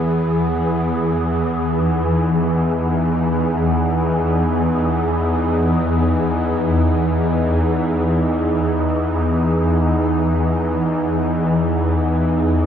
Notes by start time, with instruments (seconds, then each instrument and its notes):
Already playing: synth drone E2 E3, analog synth pad E3 B3 G#4, synth texture G#4
0.54 analog synth pad E2
1.61 analog synth pad D#4